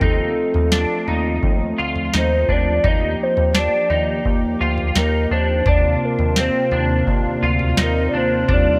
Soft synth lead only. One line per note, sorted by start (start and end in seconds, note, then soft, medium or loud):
0.04 1.08 A4 medium
2.16 2.54 C5 medium
2.52 2.89 D5 medium
2.88 3.25 D#5 loud
3.23 3.60 C5 medium
3.59 4.27 D5 medium
4.98 5.34 A#4 medium
5.33 5.70 C5 medium
5.68 6.06 D5 loud
6.05 6.42 A#4 medium
6.40 7.09 C5 medium
7.82 8.07 A#4 medium
8.09 8.18 D5 medium
8.17 8.54 C5 medium
8.53 8.79 D5 medium